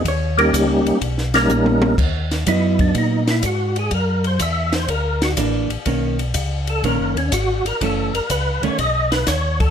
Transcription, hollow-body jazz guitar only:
X:1
M:4/4
L:1/8
Q:"Swing" 1/4=124
K:G#m
V:1 name="Hollow-body jazz guitar"
c A z6 | z2 [F,B,D]3 z3 | z6 [E,A,=D] z | [D,A,C] z3 [D,A,C] z3 |
[E,=A,C] z2 [D,A,C] z4 |]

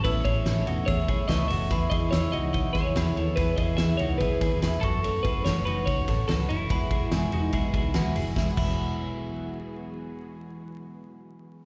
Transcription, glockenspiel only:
X:1
M:4/4
L:1/8
Q:1/4=144
K:E
V:1 name="Glockenspiel"
e'4 e'2 c'2 | b2 e'6- | e'6- e' c'- | c'8 |
b2 g4 b2 | b b6- b- | b8 |]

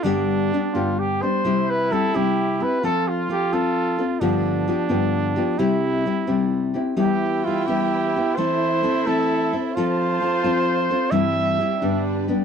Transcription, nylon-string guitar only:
X:1
M:6/8
L:1/8
Q:3/8=87
K:C
V:1 name="Nylon-string guitar"
[G,,D,G,B,DG]2 [G,B,DG] [G,,D,G,B,DG]2 [G,B,DG] | [C,G,CEG]2 [G,CEG] [C,G,CEG]2 [CEG] | [F,CFA]2 [F,CFA] [F,CFA]2 [CFA] | [G,,D,F,B,FG]2 [F,B,FG] [G,,D,F,B,FG]2 [F,B,FG] |
[C,G,CEG]2 [G,CEG] [C,G,CEG]2 [CEG] | [E,G,B,EG]2 [G,B,EG] [E,G,B,EG]2 [B,EG] | [E,A,CEA]2 [A,CEA] [E,A,CEA]2 [CEA] | [F,CFA]2 [F,CFA] [F,CFA]2 [CFA] |
[G,,E,G,CEG]2 [G,CEG] [G,,D,G,B,DG]2 [G,B,DG] |]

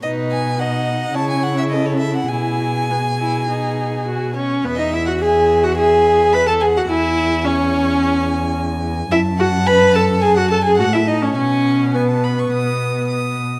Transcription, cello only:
X:1
M:4/4
L:1/8
Q:1/4=107
K:E
V:1 name="Cello" clef=bass
B,,4 C,4 | B,,6- B,, z | E,,8 | E,,8 |
F,,6 A,,2 | B,,4 B,,3 z |]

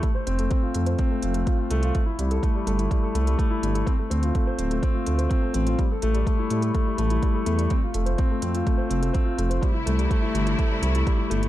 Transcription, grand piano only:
X:1
M:4/4
L:1/16
Q:1/4=125
K:Flyd
V:1 name="Grand piano"
A, c C A, C F A, c C A, F A, F F A, F | A, E G, A A, G, A, E G, A A, G, A, E G, A | C A, C F A, c C A, C F A, c C A, C F | G, A A, G, A, E G, A A, G, A, E G, A A, G, |
C F A, c C A, C F A, c C A, C F A, c | G, E A, G, A, E G, E A, G, A, E G, E A, G, |]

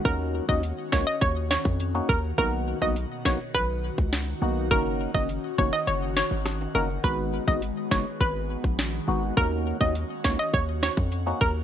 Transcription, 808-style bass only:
X:1
M:4/4
L:1/16
Q:1/4=103
K:D#phr
V:1 name="808-style bass" clef=bass
D,,3 D,,2 z C,, z D,,3 ^E,,3 D,,2 | B,,,3 B,,,2 z A,,, z B,,,3 C,,3 B,,,2 | F,,,3 F,,,2 z ^E,,, z F,,,3 G,,,3 F,,,2 | G,,,3 G,,,2 z F,,, z G,,,3 A,,,3 G,,,2 |
D,,3 D,,2 z C,, z D,,3 ^E,,3 D,,2 |]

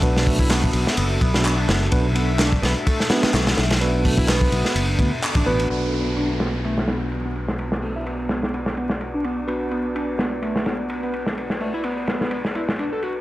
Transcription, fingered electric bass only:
X:1
M:4/4
L:1/16
Q:"Swing 16ths" 1/4=127
K:Bm
V:1 name="Fingered electric bass" clef=bass
B,,,6 B,,, z F,,,2 B,,,4 F,,,2 | B,,,6 B,,, z4 z B,,,2 B,,,2- | B,,,6 B,,, z F,,,2 D,, z2 A,,, A,,,2 | B,,,16- |
B,,,16- | B,,,16- | B,,,16 |]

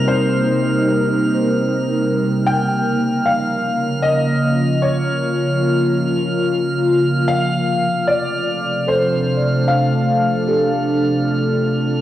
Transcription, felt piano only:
X:1
M:3/4
L:1/8
Q:1/4=75
K:Bb
V:1 name="Felt piano"
c2 z4 | g2 f2 e2 | _d4- d z | f2 d2 c2 |
f4 z2 |]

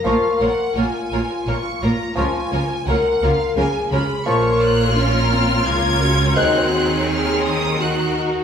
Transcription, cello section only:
X:1
M:3/4
L:1/8
Q:1/4=85
K:Bbphr
V:1 name="Cello section" clef=bass
B,, B,, B,, B,, B,, B,, | D, D, D, D, D, D, | [K:Bbm] B,,4 D,2 | E,6 |]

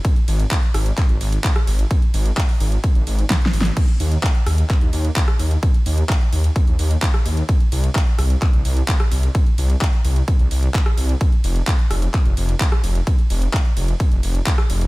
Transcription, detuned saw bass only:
X:1
M:4/4
L:1/16
Q:1/4=129
K:Cm
V:1 name="Detuned saw bass" clef=bass
z2 A,,, z3 A,,, z2 A,,, A,,, z3 A,,, z | z2 A,,, z3 A,,, z2 A,,, A,,, z3 A,,, z | z2 E,, z3 E,, z2 E,, E,, z3 E,, z | z2 E,, z3 E,, z2 E,, E,, z3 E,, z |
z2 C,, z3 C,, z2 C,, C,, z3 C,, z | z2 C,, z3 C,, z2 C,, C,, z3 C,, z | z2 F,,, z3 F,,, z2 F,,, F,,, z3 F,,, z | z2 F,,, z3 F,,, z2 F,,, F,,, z3 F,,, z |]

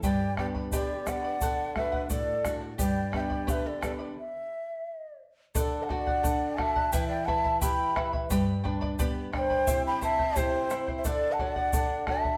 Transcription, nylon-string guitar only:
X:1
M:2/4
L:1/8
Q:1/4=87
K:Dmix
V:1 name="Nylon-string guitar"
G,, [B,DG] D, [B,DG] | D, [A,DF] A,, [A,DF] | G,, [B,DG] D, [B,DG] | z4 |
D, F D F | E, B G B | G,, D B, D | C, E C E |
D, F D F |]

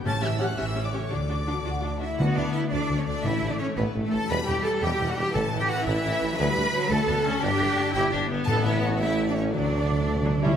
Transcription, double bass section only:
X:1
M:6/8
L:1/8
Q:3/8=114
K:D
V:1 name="Double bass section" clef=bass
A,,,3 A,,,3 | D,,3 D,,3 | D,, D,, z D,, D,, D,, | A,,, A,,, z A,,, A,,, A,,, |
E,, E,, z E,, E,, E,, | A,,, A,,, z A,,, A,,, A,,, | D,, D,, z D,, D,, D,, | G,,, G,,, z G,,, G,,, G,,, |
A,,,6 | D,,4- D,, z |]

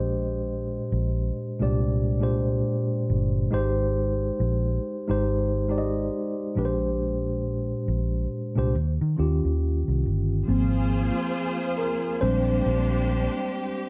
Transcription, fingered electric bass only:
X:1
M:4/4
L:1/16
Q:"Swing 16ths" 1/4=69
K:Bbmix
V:1 name="Fingered electric bass" clef=bass
B,,,4 B,,,2 z C,,4- C,, z2 G,,,2 | A,,,4 B,,,2 z A,,,4- A,,, z2 B,,,2- | B,,,4 B,,,2 z C,, E,, E, E,, E,,2 C,, G,,,2 | [K:Ab] A,,,3 z4 z B,,,2 B,,,3 z3 |]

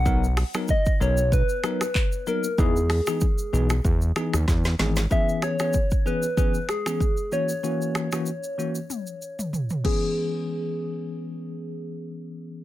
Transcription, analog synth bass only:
X:1
M:4/4
L:1/16
Q:"Swing 16ths" 1/4=95
K:C#dor
V:1 name="Analog synth bass" clef=bass
B,,,3 z3 B,,,3 z6 z | E,,3 z3 B,,,2 E,,2 z D,, E,,2 G,,,2 | z16 | z16 |
z16 |]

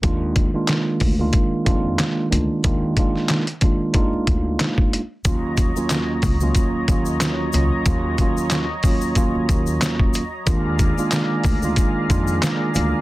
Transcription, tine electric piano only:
X:1
M:4/4
L:1/16
Q:"Swing 16ths" 1/4=92
K:Ebm
V:1 name="Tine electric piano"
[E,A,B,=DF]3 [E,A,B,DF]4 [E,A,B,DF]3 [E,A,B,DF]4 [E,A,B,DF]2 | [E,A,B,=DF]2 [E,A,B,DF]3 z [E,A,B,DF]2 [A,B,DEF]6 z2 | [E,,G,B,DF]3 [E,,G,B,DF]4 [E,,G,B,DF]3 [E,,G,B,DF]4 [E,,G,B,DF]2 | [E,,G,B,DF]2 [E,,G,B,DF]3 z [E,,G,B,DF]2 [E,,G,B,DF]6 z2 |
[E,A,B,=DF]3 [E,A,B,DF]4 [E,A,B,DF]3 [E,A,B,DF]4 [E,A,B,DF]2 |]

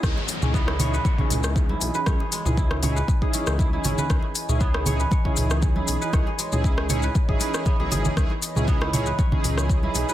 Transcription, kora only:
X:1
M:4/4
L:1/16
Q:"Swing 16ths" 1/4=118
K:C#m
V:1 name="Kora"
z3 C B, E c B c C z3 E z B | c G G, G E z c B z G C z E E C B | z3 C B, E c B c C z3 E z B | c G G, G E z c B z G B z B, G G G |
z3 C B, E c B c C z3 E z B |]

